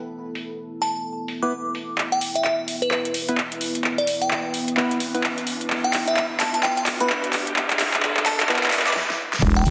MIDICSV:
0, 0, Header, 1, 8, 480
1, 0, Start_track
1, 0, Key_signature, 1, "minor"
1, 0, Tempo, 465116
1, 124, Time_signature, 4, 2, 24, 8
1, 10012, End_track
2, 0, Start_track
2, 0, Title_t, "Synth bell"
2, 0, Program_c, 0, 98
2, 843, Note_on_c, 0, 81, 91
2, 1020, Note_off_c, 0, 81, 0
2, 1470, Note_on_c, 0, 86, 87
2, 2044, Note_off_c, 0, 86, 0
2, 2190, Note_on_c, 0, 79, 86
2, 2401, Note_off_c, 0, 79, 0
2, 2430, Note_on_c, 0, 76, 83
2, 2490, Note_off_c, 0, 76, 0
2, 2523, Note_on_c, 0, 76, 76
2, 2617, Note_off_c, 0, 76, 0
2, 2910, Note_on_c, 0, 71, 85
2, 2970, Note_off_c, 0, 71, 0
2, 3003, Note_on_c, 0, 71, 75
2, 3097, Note_off_c, 0, 71, 0
2, 4110, Note_on_c, 0, 74, 87
2, 4250, Note_off_c, 0, 74, 0
2, 4350, Note_on_c, 0, 79, 83
2, 4684, Note_off_c, 0, 79, 0
2, 6030, Note_on_c, 0, 79, 89
2, 6241, Note_off_c, 0, 79, 0
2, 6271, Note_on_c, 0, 76, 87
2, 6330, Note_off_c, 0, 76, 0
2, 6365, Note_on_c, 0, 76, 73
2, 6458, Note_off_c, 0, 76, 0
2, 6604, Note_on_c, 0, 81, 86
2, 6698, Note_off_c, 0, 81, 0
2, 6751, Note_on_c, 0, 81, 75
2, 6811, Note_off_c, 0, 81, 0
2, 6844, Note_on_c, 0, 79, 88
2, 6938, Note_off_c, 0, 79, 0
2, 6990, Note_on_c, 0, 79, 72
2, 7050, Note_off_c, 0, 79, 0
2, 7230, Note_on_c, 0, 83, 96
2, 7370, Note_off_c, 0, 83, 0
2, 8523, Note_on_c, 0, 81, 95
2, 8699, Note_off_c, 0, 81, 0
2, 9150, Note_on_c, 0, 86, 96
2, 9244, Note_off_c, 0, 86, 0
2, 9870, Note_on_c, 0, 79, 87
2, 10012, Note_off_c, 0, 79, 0
2, 10012, End_track
3, 0, Start_track
3, 0, Title_t, "Ambient pad"
3, 0, Program_c, 1, 92
3, 0, Note_on_c, 1, 59, 81
3, 0, Note_on_c, 1, 64, 73
3, 0, Note_on_c, 1, 69, 89
3, 2003, Note_off_c, 1, 59, 0
3, 2004, Note_off_c, 1, 64, 0
3, 2034, Note_off_c, 1, 69, 0
3, 2043, Note_on_c, 1, 64, 77
3, 2044, Note_on_c, 1, 59, 78
3, 2044, Note_on_c, 1, 71, 92
3, 5845, Note_off_c, 1, 64, 0
3, 5883, Note_on_c, 1, 62, 78
3, 9202, Note_off_c, 1, 59, 0
3, 9202, Note_off_c, 1, 71, 0
3, 9210, Note_off_c, 1, 62, 0
3, 10012, End_track
4, 0, Start_track
4, 0, Title_t, "Synth stab"
4, 0, Program_c, 2, 62
4, 1471, Note_on_c, 2, 59, 87
4, 1471, Note_on_c, 2, 64, 79
4, 1471, Note_on_c, 2, 71, 98
4, 1578, Note_off_c, 2, 59, 0
4, 1578, Note_off_c, 2, 64, 0
4, 1578, Note_off_c, 2, 71, 0
4, 3391, Note_on_c, 2, 59, 79
4, 3391, Note_on_c, 2, 71, 93
4, 3392, Note_on_c, 2, 64, 79
4, 3499, Note_off_c, 2, 59, 0
4, 3499, Note_off_c, 2, 64, 0
4, 3499, Note_off_c, 2, 71, 0
4, 4924, Note_on_c, 2, 59, 81
4, 4924, Note_on_c, 2, 64, 73
4, 4924, Note_on_c, 2, 71, 95
4, 5141, Note_off_c, 2, 59, 0
4, 5141, Note_off_c, 2, 64, 0
4, 5141, Note_off_c, 2, 71, 0
4, 5309, Note_on_c, 2, 71, 99
4, 5310, Note_on_c, 2, 59, 91
4, 5310, Note_on_c, 2, 64, 81
4, 5418, Note_off_c, 2, 59, 0
4, 5418, Note_off_c, 2, 64, 0
4, 5418, Note_off_c, 2, 71, 0
4, 7230, Note_on_c, 2, 59, 83
4, 7230, Note_on_c, 2, 64, 76
4, 7230, Note_on_c, 2, 71, 97
4, 7338, Note_off_c, 2, 59, 0
4, 7338, Note_off_c, 2, 64, 0
4, 7338, Note_off_c, 2, 71, 0
4, 8763, Note_on_c, 2, 59, 84
4, 8763, Note_on_c, 2, 64, 77
4, 8763, Note_on_c, 2, 71, 95
4, 8981, Note_off_c, 2, 59, 0
4, 8981, Note_off_c, 2, 64, 0
4, 8981, Note_off_c, 2, 71, 0
4, 10012, End_track
5, 0, Start_track
5, 0, Title_t, "FM bass"
5, 0, Program_c, 3, 39
5, 9724, Note_on_c, 3, 28, 97
5, 9949, Note_off_c, 3, 28, 0
5, 9963, Note_on_c, 3, 38, 101
5, 10012, Note_off_c, 3, 38, 0
5, 10012, End_track
6, 0, Start_track
6, 0, Title_t, "Riser"
6, 0, Program_c, 4, 103
6, 2044, Note_on_c, 4, 60, 77
6, 9244, Note_off_c, 4, 60, 0
6, 10012, End_track
7, 0, Start_track
7, 0, Title_t, "Swell"
7, 0, Program_c, 5, 103
7, 8763, Note_on_c, 5, 60, 83
7, 9723, Note_off_c, 5, 60, 0
7, 10012, End_track
8, 0, Start_track
8, 0, Title_t, "Drums"
8, 364, Note_on_c, 9, 46, 96
8, 467, Note_off_c, 9, 46, 0
8, 844, Note_on_c, 9, 46, 84
8, 947, Note_off_c, 9, 46, 0
8, 1324, Note_on_c, 9, 46, 102
8, 1427, Note_off_c, 9, 46, 0
8, 1804, Note_on_c, 9, 46, 82
8, 1907, Note_off_c, 9, 46, 0
8, 2043, Note_on_c, 9, 39, 47
8, 2146, Note_off_c, 9, 39, 0
8, 2190, Note_on_c, 9, 42, 33
8, 2284, Note_on_c, 9, 46, 106
8, 2293, Note_off_c, 9, 42, 0
8, 2387, Note_off_c, 9, 46, 0
8, 2431, Note_on_c, 9, 42, 70
8, 2524, Note_on_c, 9, 39, 47
8, 2534, Note_off_c, 9, 42, 0
8, 2627, Note_off_c, 9, 39, 0
8, 2764, Note_on_c, 9, 46, 85
8, 2867, Note_off_c, 9, 46, 0
8, 2911, Note_on_c, 9, 42, 68
8, 3003, Note_on_c, 9, 39, 51
8, 3014, Note_off_c, 9, 42, 0
8, 3107, Note_off_c, 9, 39, 0
8, 3150, Note_on_c, 9, 42, 50
8, 3243, Note_on_c, 9, 46, 100
8, 3253, Note_off_c, 9, 42, 0
8, 3347, Note_off_c, 9, 46, 0
8, 3391, Note_on_c, 9, 42, 71
8, 3484, Note_on_c, 9, 39, 53
8, 3494, Note_off_c, 9, 42, 0
8, 3587, Note_off_c, 9, 39, 0
8, 3631, Note_on_c, 9, 42, 52
8, 3725, Note_on_c, 9, 46, 90
8, 3734, Note_off_c, 9, 42, 0
8, 3828, Note_off_c, 9, 46, 0
8, 3871, Note_on_c, 9, 42, 69
8, 3965, Note_on_c, 9, 39, 58
8, 3975, Note_off_c, 9, 42, 0
8, 4069, Note_off_c, 9, 39, 0
8, 4112, Note_on_c, 9, 42, 34
8, 4204, Note_on_c, 9, 46, 110
8, 4215, Note_off_c, 9, 42, 0
8, 4307, Note_off_c, 9, 46, 0
8, 4350, Note_on_c, 9, 42, 67
8, 4444, Note_on_c, 9, 39, 61
8, 4454, Note_off_c, 9, 42, 0
8, 4548, Note_off_c, 9, 39, 0
8, 4684, Note_on_c, 9, 46, 88
8, 4787, Note_off_c, 9, 46, 0
8, 4830, Note_on_c, 9, 42, 65
8, 4923, Note_on_c, 9, 39, 64
8, 4933, Note_off_c, 9, 42, 0
8, 5027, Note_off_c, 9, 39, 0
8, 5070, Note_on_c, 9, 42, 52
8, 5163, Note_on_c, 9, 46, 111
8, 5173, Note_off_c, 9, 42, 0
8, 5266, Note_off_c, 9, 46, 0
8, 5310, Note_on_c, 9, 42, 65
8, 5403, Note_on_c, 9, 39, 70
8, 5413, Note_off_c, 9, 42, 0
8, 5506, Note_off_c, 9, 39, 0
8, 5550, Note_on_c, 9, 42, 52
8, 5643, Note_on_c, 9, 46, 93
8, 5653, Note_off_c, 9, 42, 0
8, 5746, Note_off_c, 9, 46, 0
8, 5790, Note_on_c, 9, 42, 65
8, 5883, Note_on_c, 9, 39, 74
8, 5893, Note_off_c, 9, 42, 0
8, 5987, Note_off_c, 9, 39, 0
8, 6031, Note_on_c, 9, 42, 33
8, 6123, Note_on_c, 9, 39, 74
8, 6123, Note_on_c, 9, 46, 112
8, 6134, Note_off_c, 9, 42, 0
8, 6227, Note_off_c, 9, 39, 0
8, 6227, Note_off_c, 9, 46, 0
8, 6269, Note_on_c, 9, 42, 64
8, 6364, Note_on_c, 9, 39, 78
8, 6373, Note_off_c, 9, 42, 0
8, 6467, Note_off_c, 9, 39, 0
8, 6603, Note_on_c, 9, 39, 75
8, 6603, Note_on_c, 9, 46, 95
8, 6707, Note_off_c, 9, 39, 0
8, 6707, Note_off_c, 9, 46, 0
8, 6749, Note_on_c, 9, 42, 64
8, 6843, Note_on_c, 9, 39, 82
8, 6853, Note_off_c, 9, 42, 0
8, 6946, Note_off_c, 9, 39, 0
8, 6990, Note_on_c, 9, 42, 51
8, 7082, Note_on_c, 9, 39, 84
8, 7082, Note_on_c, 9, 46, 115
8, 7093, Note_off_c, 9, 42, 0
8, 7185, Note_off_c, 9, 39, 0
8, 7185, Note_off_c, 9, 46, 0
8, 7228, Note_on_c, 9, 42, 69
8, 7323, Note_on_c, 9, 39, 90
8, 7332, Note_off_c, 9, 42, 0
8, 7426, Note_off_c, 9, 39, 0
8, 7470, Note_on_c, 9, 42, 52
8, 7564, Note_on_c, 9, 39, 84
8, 7564, Note_on_c, 9, 46, 96
8, 7573, Note_off_c, 9, 42, 0
8, 7667, Note_off_c, 9, 39, 0
8, 7667, Note_off_c, 9, 46, 0
8, 7710, Note_on_c, 9, 42, 66
8, 7803, Note_on_c, 9, 39, 89
8, 7814, Note_off_c, 9, 42, 0
8, 7906, Note_off_c, 9, 39, 0
8, 7950, Note_on_c, 9, 39, 77
8, 7950, Note_on_c, 9, 42, 34
8, 8043, Note_off_c, 9, 39, 0
8, 8043, Note_on_c, 9, 39, 94
8, 8043, Note_on_c, 9, 46, 111
8, 8053, Note_off_c, 9, 42, 0
8, 8146, Note_off_c, 9, 39, 0
8, 8146, Note_off_c, 9, 46, 0
8, 8190, Note_on_c, 9, 39, 81
8, 8190, Note_on_c, 9, 42, 64
8, 8283, Note_off_c, 9, 39, 0
8, 8283, Note_on_c, 9, 39, 99
8, 8293, Note_off_c, 9, 42, 0
8, 8386, Note_off_c, 9, 39, 0
8, 8429, Note_on_c, 9, 39, 88
8, 8523, Note_off_c, 9, 39, 0
8, 8523, Note_on_c, 9, 39, 100
8, 8523, Note_on_c, 9, 46, 93
8, 8626, Note_off_c, 9, 39, 0
8, 8626, Note_off_c, 9, 46, 0
8, 8670, Note_on_c, 9, 39, 91
8, 8670, Note_on_c, 9, 42, 64
8, 8763, Note_off_c, 9, 39, 0
8, 8763, Note_on_c, 9, 39, 103
8, 8773, Note_off_c, 9, 42, 0
8, 8837, Note_off_c, 9, 39, 0
8, 8837, Note_on_c, 9, 39, 93
8, 8910, Note_off_c, 9, 39, 0
8, 8910, Note_on_c, 9, 39, 87
8, 8910, Note_on_c, 9, 42, 49
8, 8957, Note_off_c, 9, 39, 0
8, 8957, Note_on_c, 9, 39, 86
8, 9004, Note_off_c, 9, 39, 0
8, 9004, Note_on_c, 9, 39, 104
8, 9004, Note_on_c, 9, 46, 116
8, 9013, Note_off_c, 9, 42, 0
8, 9077, Note_off_c, 9, 39, 0
8, 9077, Note_on_c, 9, 39, 96
8, 9107, Note_off_c, 9, 46, 0
8, 9150, Note_off_c, 9, 39, 0
8, 9150, Note_on_c, 9, 39, 97
8, 9150, Note_on_c, 9, 42, 67
8, 9197, Note_off_c, 9, 39, 0
8, 9197, Note_on_c, 9, 39, 96
8, 9243, Note_on_c, 9, 38, 66
8, 9254, Note_off_c, 9, 42, 0
8, 9300, Note_off_c, 9, 39, 0
8, 9347, Note_off_c, 9, 38, 0
8, 9391, Note_on_c, 9, 38, 62
8, 9494, Note_off_c, 9, 38, 0
8, 9630, Note_on_c, 9, 38, 85
8, 9724, Note_on_c, 9, 36, 125
8, 9724, Note_on_c, 9, 49, 104
8, 9733, Note_off_c, 9, 38, 0
8, 9827, Note_off_c, 9, 36, 0
8, 9827, Note_off_c, 9, 49, 0
8, 9964, Note_on_c, 9, 46, 108
8, 10012, Note_off_c, 9, 46, 0
8, 10012, End_track
0, 0, End_of_file